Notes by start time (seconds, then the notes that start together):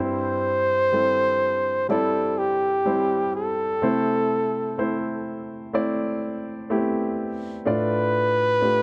Already playing: G2 G3 C4 E4 C5
0.92 G3 C4 E4 A4
1.89 G3 C4 E4 A4 D5
2.38 G4
2.86 G3 C4 E4 C5
3.35 A4
3.82 C3 A3 C4 E4 C5
4.78 A3 C4 E4 C5
5.73 A3 C4 E4 D5
6.70 A3 B3 E4 G4
6.77 C4
7.66 A2 A3 D4 F4 B4 D5
8.61 A3 D4 F4 G4